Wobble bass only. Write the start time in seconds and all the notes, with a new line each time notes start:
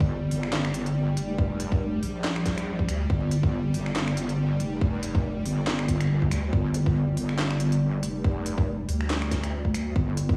Already playing: G1
0.31 G1
1.17 F1
2.03 A#1
2.88 D2
3.10 G1
3.74 G1
4.60 F1
5.46 G1
6.31 D2
6.53 G1
7.17 G1
8.03 F1
8.89 D2
9.96 G1